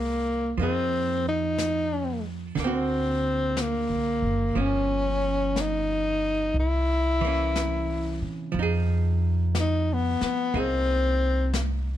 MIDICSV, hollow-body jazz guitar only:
0, 0, Header, 1, 2, 480
1, 0, Start_track
1, 0, Key_signature, -4, "minor"
1, 0, Tempo, 993377
1, 286, Time_signature, 4, 2, 24, 8
1, 5785, End_track
2, 0, Start_track
2, 0, Title_t, "Hollow-body jazz guitar"
2, 0, Program_c, 0, 26
2, 0, Note_on_c, 0, 56, 36
2, 0, Note_on_c, 0, 58, 37
2, 0, Note_on_c, 0, 64, 35
2, 276, Note_off_c, 0, 56, 0
2, 278, Note_on_c, 0, 53, 33
2, 281, Note_off_c, 0, 58, 0
2, 287, Note_on_c, 0, 58, 33
2, 293, Note_off_c, 0, 64, 0
2, 295, Note_on_c, 0, 63, 32
2, 303, Note_on_c, 0, 68, 37
2, 1234, Note_on_c, 0, 50, 38
2, 1242, Note_off_c, 0, 53, 0
2, 1247, Note_off_c, 0, 58, 0
2, 1251, Note_off_c, 0, 63, 0
2, 1254, Note_off_c, 0, 68, 0
2, 1254, Note_on_c, 0, 58, 38
2, 1276, Note_on_c, 0, 60, 48
2, 1289, Note_on_c, 0, 66, 45
2, 2198, Note_off_c, 0, 58, 0
2, 2200, Note_on_c, 0, 53, 34
2, 2201, Note_off_c, 0, 50, 0
2, 2204, Note_off_c, 0, 60, 0
2, 2206, Note_on_c, 0, 58, 34
2, 2208, Note_off_c, 0, 66, 0
2, 2210, Note_on_c, 0, 61, 39
2, 3165, Note_off_c, 0, 53, 0
2, 3168, Note_off_c, 0, 58, 0
2, 3170, Note_off_c, 0, 61, 0
2, 3485, Note_on_c, 0, 52, 38
2, 3501, Note_on_c, 0, 58, 39
2, 3512, Note_on_c, 0, 61, 41
2, 4114, Note_off_c, 0, 52, 0
2, 4116, Note_on_c, 0, 53, 42
2, 4136, Note_off_c, 0, 58, 0
2, 4141, Note_off_c, 0, 61, 0
2, 4151, Note_on_c, 0, 63, 46
2, 4168, Note_on_c, 0, 68, 43
2, 5093, Note_on_c, 0, 58, 37
2, 5094, Note_off_c, 0, 63, 0
2, 5100, Note_on_c, 0, 63, 36
2, 5101, Note_off_c, 0, 68, 0
2, 5107, Note_on_c, 0, 68, 36
2, 5785, Note_off_c, 0, 53, 0
2, 5785, Note_off_c, 0, 58, 0
2, 5785, Note_off_c, 0, 63, 0
2, 5785, Note_off_c, 0, 68, 0
2, 5785, End_track
0, 0, End_of_file